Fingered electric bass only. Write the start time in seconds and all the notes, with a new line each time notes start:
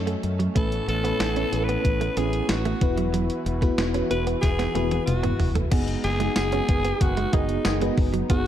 Already playing: F#2
0.24 F#2
0.56 A1
0.88 A1
1.20 A1
1.53 A1
1.85 A1
2.17 A1
2.49 A1
2.82 E1
3.46 E1
3.78 E1
4.11 E1
4.43 E1
4.75 E1
5.08 E1
5.40 E1
5.72 F#1
6.04 F#1
6.37 F#1
6.69 F#1
7.01 F#1
7.33 F#1
7.66 F#1
7.98 F#1
8.30 F#1